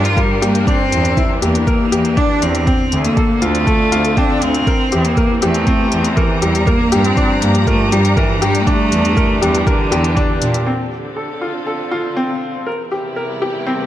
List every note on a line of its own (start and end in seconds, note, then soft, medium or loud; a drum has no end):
0.00 0.13 G2 medium
0.00 0.67 F3 medium
0.00 0.67 D4 medium
0.00 3.47 D4 medium
0.00 0.69 F4 medium
0.00 0.42 G4 medium
0.00 3.47 G4 medium
0.00 0.17 A#4 medium
0.00 2.67 A#4 medium
0.05 0.19 F4 medium
0.05 closed hi-hat soft
0.17 0.43 G3 medium
0.17 0.41 A#4 medium
0.17 kick loud
0.17 closed hi-hat soft
0.42 0.63 G2 medium
0.42 0.67 A#3 medium
0.42 0.56 G4 medium
0.42 closed hi-hat medium
0.55 closed hi-hat soft
0.67 2.67 E3 medium
0.67 1.38 C4 loud
0.67 0.81 D4 medium
0.67 kick medium
0.67 closed hi-hat soft
0.92 1.13 E2 medium
0.92 closed hi-hat medium
1.05 closed hi-hat soft
1.17 1.31 E4 medium
1.17 kick loud
1.17 closed hi-hat soft
1.42 1.63 E2 medium
1.42 2.19 A#3 loud
1.42 1.66 G4 medium
1.42 closed hi-hat medium
1.55 closed hi-hat soft
1.67 1.91 A#4 medium
1.67 kick medium
1.67 closed hi-hat soft
1.92 2.13 E2 medium
1.92 2.06 G4 medium
1.92 closed hi-hat medium
2.05 closed hi-hat soft
2.17 2.31 D4 medium
2.17 2.44 D4 loud
2.17 kick loud
2.17 closed hi-hat soft
2.42 2.63 E2 medium
2.42 3.04 C4 medium
2.42 closed hi-hat medium
2.55 closed hi-hat soft
2.67 4.68 D3 medium
2.67 2.81 C4 medium
2.67 kick loud
2.67 closed hi-hat soft
2.92 3.13 D2 medium
2.92 closed hi-hat medium
3.04 3.44 A#3 medium
3.04 closed hi-hat soft
3.16 7.48 C4 medium
3.16 3.31 A4 medium
3.16 kick loud
3.16 closed hi-hat soft
3.33 4.67 A4 medium
3.39 3.63 D2 medium
3.39 4.19 A3 loud
3.39 4.67 F4 medium
3.39 3.66 F4 medium
3.39 closed hi-hat medium
3.55 closed hi-hat soft
3.67 3.91 A4 medium
3.67 kick medium
3.67 closed hi-hat soft
3.92 4.13 D2 medium
3.92 4.06 F4 medium
3.92 closed hi-hat medium
4.05 closed hi-hat soft
4.17 4.31 C4 loud
4.17 4.43 D4 medium
4.17 kick loud
4.17 closed hi-hat soft
4.42 4.63 D2 medium
4.42 5.07 C4 loud
4.42 closed hi-hat medium
4.54 closed hi-hat soft
4.67 6.67 E3 medium
4.67 4.81 A#4 medium
4.67 kick medium
4.67 closed hi-hat soft
4.92 5.13 E2 medium
4.92 5.16 G4 medium
4.92 closed hi-hat medium
5.05 5.42 A#3 medium
5.05 closed hi-hat soft
5.17 5.41 A#4 medium
5.17 kick medium
5.17 closed hi-hat soft
5.34 11.47 G4 medium
5.42 5.63 E2 medium
5.42 6.19 A3 medium
5.42 5.57 G4 loud
5.42 closed hi-hat medium
5.54 10.67 A#5 medium
5.54 closed hi-hat soft
5.67 5.82 C4 loud
5.67 kick medium
5.67 closed hi-hat soft
5.92 6.13 E2 medium
5.92 closed hi-hat medium
6.04 closed hi-hat soft
6.17 6.44 E3 medium
6.17 6.31 A#4 medium
6.17 kick loud
6.17 closed hi-hat soft
6.42 6.63 E2 medium
6.42 6.69 G3 medium
6.42 6.66 G4 medium
6.42 closed hi-hat medium
6.55 closed hi-hat soft
6.67 8.67 F3 medium
6.67 7.06 A#3 loud
6.67 6.91 A#4 medium
6.67 kick loud
6.67 closed hi-hat soft
6.78 11.47 D4 medium
6.92 7.13 G2 loud
6.92 7.06 G4 loud
6.92 closed hi-hat medium
7.04 7.44 C4 loud
7.04 closed hi-hat soft
7.17 7.31 D4 medium
7.17 kick medium
7.17 closed hi-hat soft
7.42 7.63 G2 medium
7.42 7.66 A#3 medium
7.42 closed hi-hat medium
7.55 closed hi-hat soft
7.67 7.94 A3 loud
7.67 7.81 A#4 medium
7.67 kick medium
7.67 closed hi-hat soft
7.92 8.13 G2 medium
7.92 8.19 G3 medium
7.92 8.16 G4 medium
7.92 closed hi-hat medium
8.05 closed hi-hat soft
8.17 8.45 E3 medium
8.17 8.41 A#4 medium
8.17 kick loud
8.17 closed hi-hat soft
8.42 8.63 G2 medium
8.42 8.63 G3 medium
8.42 8.56 G4 loud
8.42 closed hi-hat medium
8.55 closed hi-hat soft
8.61 8.70 A#3 medium
8.67 10.67 E3 medium
8.67 9.45 A3 loud
8.67 8.81 D4 medium
8.67 kick medium
8.67 closed hi-hat soft
8.92 9.13 E2 medium
8.92 closed hi-hat medium
9.05 closed hi-hat soft
9.17 9.31 A#4 medium
9.17 kick medium
9.17 closed hi-hat soft
9.42 9.63 E2 medium
9.42 9.67 G3 medium
9.42 9.66 G4 medium
9.42 closed hi-hat medium
9.55 closed hi-hat soft
9.67 10.38 D3 medium
9.67 9.91 A#4 medium
9.67 kick loud
9.67 closed hi-hat soft
9.91 10.12 E2 loud
9.91 10.06 G4 medium
9.91 closed hi-hat medium
10.04 closed hi-hat soft
10.16 10.31 D4 loud
10.16 kick medium
10.16 closed hi-hat soft
10.41 10.62 A#2 medium
10.41 closed hi-hat medium
10.54 closed hi-hat soft
10.67 12.67 D3 medium
10.67 10.81 C4 medium
10.84 13.47 C4 medium
10.84 12.67 A4 medium
11.17 11.31 A4 medium
11.41 11.66 F4 medium
11.49 12.67 F4 soft
11.67 11.91 A4 medium
11.92 12.06 F4 medium
12.17 12.31 C4 medium
12.66 13.86 E2 medium
12.66 12.81 A#4 medium
12.87 13.86 C3 medium
12.87 13.86 E4 medium
12.92 13.16 G4 medium
13.16 13.40 A#4 medium
13.30 13.86 G3 medium
13.42 13.56 G4 medium
13.58 13.86 A#4 medium
13.67 13.81 C4 medium